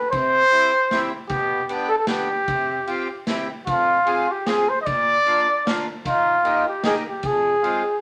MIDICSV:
0, 0, Header, 1, 4, 480
1, 0, Start_track
1, 0, Key_signature, -4, "minor"
1, 0, Tempo, 394477
1, 165, Time_signature, 3, 2, 24, 8
1, 9747, End_track
2, 0, Start_track
2, 0, Title_t, "Trumpet"
2, 0, Program_c, 0, 56
2, 0, Note_on_c, 0, 71, 84
2, 124, Note_off_c, 0, 71, 0
2, 131, Note_on_c, 0, 72, 127
2, 1313, Note_off_c, 0, 72, 0
2, 1568, Note_on_c, 0, 67, 104
2, 2025, Note_off_c, 0, 67, 0
2, 2292, Note_on_c, 0, 69, 100
2, 2402, Note_off_c, 0, 69, 0
2, 2410, Note_on_c, 0, 69, 84
2, 2525, Note_off_c, 0, 69, 0
2, 2539, Note_on_c, 0, 67, 94
2, 3942, Note_off_c, 0, 67, 0
2, 4462, Note_on_c, 0, 65, 103
2, 5246, Note_on_c, 0, 67, 84
2, 5264, Note_off_c, 0, 65, 0
2, 5441, Note_on_c, 0, 68, 90
2, 5459, Note_off_c, 0, 67, 0
2, 5707, Note_on_c, 0, 72, 86
2, 5726, Note_off_c, 0, 68, 0
2, 5850, Note_off_c, 0, 72, 0
2, 5858, Note_on_c, 0, 75, 80
2, 5911, Note_on_c, 0, 74, 118
2, 5930, Note_off_c, 0, 75, 0
2, 7147, Note_off_c, 0, 74, 0
2, 7381, Note_on_c, 0, 65, 100
2, 8065, Note_off_c, 0, 65, 0
2, 8125, Note_on_c, 0, 67, 78
2, 8317, Note_off_c, 0, 67, 0
2, 8342, Note_on_c, 0, 68, 86
2, 8455, Note_off_c, 0, 68, 0
2, 8628, Note_on_c, 0, 67, 81
2, 8833, Note_on_c, 0, 68, 99
2, 8851, Note_off_c, 0, 67, 0
2, 9703, Note_off_c, 0, 68, 0
2, 9747, End_track
3, 0, Start_track
3, 0, Title_t, "Accordion"
3, 0, Program_c, 1, 21
3, 151, Note_on_c, 1, 48, 66
3, 521, Note_off_c, 1, 48, 0
3, 629, Note_on_c, 1, 67, 67
3, 635, Note_on_c, 1, 60, 57
3, 635, Note_on_c, 1, 64, 61
3, 872, Note_off_c, 1, 67, 0
3, 875, Note_off_c, 1, 60, 0
3, 875, Note_off_c, 1, 64, 0
3, 1110, Note_on_c, 1, 60, 72
3, 1121, Note_on_c, 1, 64, 68
3, 1123, Note_on_c, 1, 67, 75
3, 1349, Note_off_c, 1, 60, 0
3, 1354, Note_off_c, 1, 64, 0
3, 1355, Note_off_c, 1, 67, 0
3, 1594, Note_on_c, 1, 47, 58
3, 1958, Note_off_c, 1, 47, 0
3, 2062, Note_on_c, 1, 59, 58
3, 2064, Note_on_c, 1, 67, 73
3, 2068, Note_on_c, 1, 62, 52
3, 2304, Note_off_c, 1, 59, 0
3, 2305, Note_off_c, 1, 67, 0
3, 2307, Note_off_c, 1, 62, 0
3, 2534, Note_on_c, 1, 59, 50
3, 2539, Note_on_c, 1, 67, 67
3, 2543, Note_on_c, 1, 62, 56
3, 2780, Note_off_c, 1, 59, 0
3, 2782, Note_off_c, 1, 67, 0
3, 2784, Note_off_c, 1, 62, 0
3, 3027, Note_on_c, 1, 48, 62
3, 3396, Note_off_c, 1, 48, 0
3, 3492, Note_on_c, 1, 60, 73
3, 3499, Note_on_c, 1, 67, 73
3, 3500, Note_on_c, 1, 65, 61
3, 3741, Note_off_c, 1, 60, 0
3, 3744, Note_off_c, 1, 67, 0
3, 3745, Note_off_c, 1, 65, 0
3, 3999, Note_on_c, 1, 60, 63
3, 3999, Note_on_c, 1, 64, 63
3, 4000, Note_on_c, 1, 67, 62
3, 4239, Note_off_c, 1, 60, 0
3, 4239, Note_off_c, 1, 64, 0
3, 4239, Note_off_c, 1, 67, 0
3, 4470, Note_on_c, 1, 41, 64
3, 4847, Note_off_c, 1, 41, 0
3, 4940, Note_on_c, 1, 60, 53
3, 4943, Note_on_c, 1, 65, 52
3, 4949, Note_on_c, 1, 68, 68
3, 5195, Note_off_c, 1, 60, 0
3, 5197, Note_off_c, 1, 65, 0
3, 5199, Note_off_c, 1, 68, 0
3, 5439, Note_on_c, 1, 60, 54
3, 5444, Note_on_c, 1, 65, 44
3, 5450, Note_on_c, 1, 68, 53
3, 5685, Note_off_c, 1, 60, 0
3, 5687, Note_off_c, 1, 65, 0
3, 5690, Note_off_c, 1, 68, 0
3, 5926, Note_on_c, 1, 46, 61
3, 6299, Note_off_c, 1, 46, 0
3, 6398, Note_on_c, 1, 58, 59
3, 6404, Note_on_c, 1, 62, 55
3, 6410, Note_on_c, 1, 65, 73
3, 6646, Note_off_c, 1, 58, 0
3, 6649, Note_off_c, 1, 62, 0
3, 6652, Note_off_c, 1, 65, 0
3, 6887, Note_on_c, 1, 58, 68
3, 6893, Note_on_c, 1, 62, 62
3, 6894, Note_on_c, 1, 65, 66
3, 7128, Note_off_c, 1, 58, 0
3, 7131, Note_off_c, 1, 62, 0
3, 7131, Note_off_c, 1, 65, 0
3, 7374, Note_on_c, 1, 51, 63
3, 7737, Note_off_c, 1, 51, 0
3, 7840, Note_on_c, 1, 58, 59
3, 7846, Note_on_c, 1, 63, 53
3, 7853, Note_on_c, 1, 67, 65
3, 8080, Note_off_c, 1, 58, 0
3, 8082, Note_off_c, 1, 63, 0
3, 8086, Note_off_c, 1, 67, 0
3, 8326, Note_on_c, 1, 58, 65
3, 8327, Note_on_c, 1, 63, 49
3, 8337, Note_on_c, 1, 67, 68
3, 8560, Note_off_c, 1, 58, 0
3, 8561, Note_off_c, 1, 63, 0
3, 8566, Note_off_c, 1, 67, 0
3, 8826, Note_on_c, 1, 41, 58
3, 9181, Note_off_c, 1, 41, 0
3, 9275, Note_on_c, 1, 56, 62
3, 9282, Note_on_c, 1, 65, 72
3, 9286, Note_on_c, 1, 60, 57
3, 9518, Note_off_c, 1, 56, 0
3, 9521, Note_off_c, 1, 65, 0
3, 9524, Note_off_c, 1, 60, 0
3, 9747, End_track
4, 0, Start_track
4, 0, Title_t, "Drums"
4, 151, Note_on_c, 9, 51, 43
4, 155, Note_on_c, 9, 36, 78
4, 272, Note_off_c, 9, 51, 0
4, 277, Note_off_c, 9, 36, 0
4, 636, Note_on_c, 9, 51, 33
4, 757, Note_off_c, 9, 51, 0
4, 1107, Note_on_c, 9, 38, 57
4, 1107, Note_on_c, 9, 51, 40
4, 1229, Note_off_c, 9, 38, 0
4, 1229, Note_off_c, 9, 51, 0
4, 1575, Note_on_c, 9, 51, 43
4, 1581, Note_on_c, 9, 36, 81
4, 1696, Note_off_c, 9, 51, 0
4, 1703, Note_off_c, 9, 36, 0
4, 2058, Note_on_c, 9, 51, 40
4, 2179, Note_off_c, 9, 51, 0
4, 2518, Note_on_c, 9, 38, 64
4, 2518, Note_on_c, 9, 51, 46
4, 2639, Note_off_c, 9, 38, 0
4, 2639, Note_off_c, 9, 51, 0
4, 3015, Note_on_c, 9, 51, 40
4, 3017, Note_on_c, 9, 36, 81
4, 3137, Note_off_c, 9, 51, 0
4, 3138, Note_off_c, 9, 36, 0
4, 3496, Note_on_c, 9, 51, 35
4, 3618, Note_off_c, 9, 51, 0
4, 3976, Note_on_c, 9, 38, 55
4, 3976, Note_on_c, 9, 51, 39
4, 4098, Note_off_c, 9, 38, 0
4, 4098, Note_off_c, 9, 51, 0
4, 4466, Note_on_c, 9, 51, 45
4, 4467, Note_on_c, 9, 36, 72
4, 4587, Note_off_c, 9, 51, 0
4, 4589, Note_off_c, 9, 36, 0
4, 4947, Note_on_c, 9, 51, 37
4, 5069, Note_off_c, 9, 51, 0
4, 5432, Note_on_c, 9, 38, 52
4, 5432, Note_on_c, 9, 51, 42
4, 5553, Note_off_c, 9, 38, 0
4, 5553, Note_off_c, 9, 51, 0
4, 5916, Note_on_c, 9, 51, 43
4, 5924, Note_on_c, 9, 36, 74
4, 6038, Note_off_c, 9, 51, 0
4, 6045, Note_off_c, 9, 36, 0
4, 6406, Note_on_c, 9, 51, 39
4, 6528, Note_off_c, 9, 51, 0
4, 6896, Note_on_c, 9, 38, 61
4, 6896, Note_on_c, 9, 51, 47
4, 7018, Note_off_c, 9, 38, 0
4, 7018, Note_off_c, 9, 51, 0
4, 7367, Note_on_c, 9, 36, 68
4, 7368, Note_on_c, 9, 51, 46
4, 7488, Note_off_c, 9, 36, 0
4, 7490, Note_off_c, 9, 51, 0
4, 7847, Note_on_c, 9, 51, 39
4, 7968, Note_off_c, 9, 51, 0
4, 8316, Note_on_c, 9, 38, 62
4, 8316, Note_on_c, 9, 51, 41
4, 8438, Note_off_c, 9, 38, 0
4, 8438, Note_off_c, 9, 51, 0
4, 8795, Note_on_c, 9, 51, 43
4, 8803, Note_on_c, 9, 36, 79
4, 8917, Note_off_c, 9, 51, 0
4, 8925, Note_off_c, 9, 36, 0
4, 9296, Note_on_c, 9, 51, 35
4, 9418, Note_off_c, 9, 51, 0
4, 9747, End_track
0, 0, End_of_file